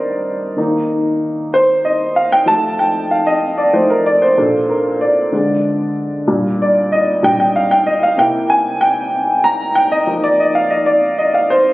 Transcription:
0.00 0.57 D#3 soft
0.00 0.60 G3 soft
0.00 0.60 D4 medium
0.00 0.53 A#4 medium
0.00 0.60 C5 medium
0.00 0.60 D5 medium
0.00 0.60 D#5 medium
0.57 1.48 D#3 medium
0.57 1.48 A#3 soft
0.57 1.49 D#4 medium
1.54 1.86 C5 medium
1.85 2.17 D#5 medium
2.16 2.32 F5 medium
2.32 2.48 G5 medium
2.46 3.72 F3 medium
2.46 3.72 A3 soft
2.46 3.72 D#4 medium
2.46 2.80 A5 loud
2.79 3.12 G5 medium
3.11 3.26 F5 medium
3.27 3.59 D#5 medium
3.58 3.73 D5 medium
3.73 4.02 F3 soft
3.73 4.02 A3 soft
3.73 4.02 D#4 soft
3.73 3.90 C5 medium
3.90 3.95 A#4 medium
4.06 4.22 D5 medium
4.22 4.70 C5 medium
4.38 5.28 A#2 medium
4.38 5.29 D4 medium
4.38 5.29 A4 soft
4.69 5.02 A#4 medium
5.01 5.92 D5 medium
5.32 5.74 D3 medium
5.32 5.75 G#3 soft
5.32 5.75 D4 medium
6.28 6.69 A#2 medium
6.28 6.70 G3 medium
6.28 6.70 D4 medium
6.62 6.93 D5 medium
6.92 7.24 D#5 medium
7.23 7.51 A#2 soft
7.23 7.51 G3 soft
7.23 7.51 D4 soft
7.23 7.38 G5 medium
7.40 7.55 G5 medium
7.56 7.70 F5 medium
7.71 7.87 G5 medium
7.86 7.91 D#5 medium
8.03 8.18 F5 medium
8.17 8.59 C3 medium
8.17 8.59 A#3 medium
8.17 8.60 E4 medium
8.17 8.51 G5 medium
8.50 8.82 G#5 medium
8.81 9.40 G5 loud
9.44 9.76 A#5 medium
9.75 9.92 G5 loud
9.92 10.24 D#5 medium
10.07 11.73 F3 medium
10.07 11.73 A#3 soft
10.07 11.73 D#4 medium
10.24 10.38 D5 medium
10.40 10.56 D#5 medium
10.55 10.71 F5 medium
10.70 10.87 D#5 medium
10.86 10.93 D5 medium
11.18 11.33 D#5 medium
11.34 11.39 F5 medium
11.50 11.73 C5 medium

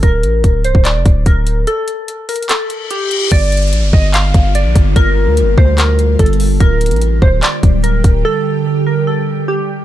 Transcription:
0.03 0.25 D1 loud
0.03 0.61 A#4 loud
0.03 kick loud
0.03 closed hi-hat medium
0.23 0.43 A1 loud
0.23 closed hi-hat medium
0.44 0.66 D1 loud
0.44 kick loud
0.44 closed hi-hat medium
0.64 0.74 C1 loud
0.64 0.84 C5 medium
0.64 closed hi-hat medium
0.75 0.97 D1 loud
0.75 kick medium
0.85 1.24 D5 medium
0.85 clap loud
0.85 closed hi-hat medium
0.95 1.05 F1 loud
1.06 1.25 D1 loud
1.06 kick loud
1.06 closed hi-hat medium
1.26 1.66 D1 loud
1.26 1.65 A#4 medium
1.26 kick loud
1.26 closed hi-hat medium
1.47 closed hi-hat medium
1.67 2.25 A4 loud
1.67 closed hi-hat medium
1.88 closed hi-hat medium
2.08 closed hi-hat medium
2.29 2.48 A#4 medium
2.29 closed hi-hat medium
2.29 open hi-hat medium
2.36 closed hi-hat medium
2.42 closed hi-hat medium
2.49 2.88 A4 medium
2.49 clap loud
2.49 closed hi-hat medium
2.49 reverse cymbal medium
2.70 closed hi-hat medium
2.90 3.29 G4 medium
2.90 closed hi-hat medium
3.11 closed hi-hat medium
3.31 3.74 G1 loud
3.31 9.85 D3 medium
3.31 9.85 G3 medium
3.31 6.57 A#3 medium
3.31 6.57 F4 medium
3.31 3.90 D5 loud
3.31 kick loud
3.31 closed hi-hat medium
3.31 downlifter medium
3.52 closed hi-hat medium
3.57 closed hi-hat medium
3.62 closed hi-hat medium
3.68 closed hi-hat soft
3.73 3.84 A1 loud
3.73 closed hi-hat medium
3.83 3.93 G1 loud
3.93 4.33 G1 loud
3.93 4.13 D#5 medium
3.93 kick loud
4.14 4.52 F5 medium
4.14 clap loud
4.14 closed hi-hat medium
4.34 4.67 G1 loud
4.34 kick medium
4.34 closed hi-hat medium
4.55 4.94 D5 medium
4.55 closed hi-hat medium
4.65 4.75 A#1 loud
4.75 4.95 G1 loud
4.75 kick loud
4.75 closed hi-hat medium
4.96 5.28 G1 loud
4.96 5.54 A#4 loud
4.96 kick loud
4.96 closed hi-hat medium
5.27 5.44 D2 loud
5.37 closed hi-hat medium
5.42 5.57 G1 loud
5.58 6.17 D2 loud
5.58 5.77 C5 medium
5.58 kick loud
5.78 6.17 A#4 medium
5.78 clap loud
5.78 closed hi-hat medium
5.99 closed hi-hat medium
6.19 6.59 G1 loud
6.19 6.58 A4 medium
6.19 kick loud
6.19 closed hi-hat medium
6.26 closed hi-hat medium
6.33 closed hi-hat soft
6.40 open hi-hat medium
6.60 6.93 D1 loud
6.60 9.85 G4 medium
6.60 7.18 A#4 loud
6.60 kick loud
6.60 closed hi-hat medium
6.81 closed hi-hat medium
6.86 closed hi-hat medium
6.91 7.21 A1 loud
6.91 closed hi-hat medium
6.96 closed hi-hat soft
7.01 closed hi-hat medium
7.22 7.42 D1 loud
7.22 7.42 C5 medium
7.22 kick loud
7.43 7.81 D5 medium
7.43 clap loud
7.43 closed hi-hat medium
7.63 8.03 D1 loud
7.63 kick loud
7.63 closed hi-hat medium
7.84 8.22 A#4 medium
7.84 closed hi-hat medium
8.04 8.24 D1 loud
8.04 kick loud
8.04 closed hi-hat medium
8.25 8.83 A4 loud
8.87 9.06 A#4 medium
9.07 9.46 A4 medium
9.48 9.85 G4 medium

